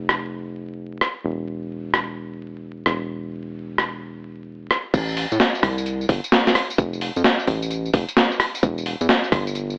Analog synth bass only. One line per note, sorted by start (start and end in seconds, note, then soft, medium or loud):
0.00 1.00 F1 medium
1.24 2.84 E1 medium
2.86 4.69 E1 medium
4.94 5.26 A1 medium
5.32 5.38 A2 medium
5.63 6.06 C2 loud
6.09 6.21 G1 medium
6.78 7.11 F1 medium
7.16 7.23 F2 loud
7.48 7.91 A1 loud
7.94 8.05 F1 loud
8.63 8.95 E1 loud
9.01 9.07 E2 loud
9.32 9.75 G1 loud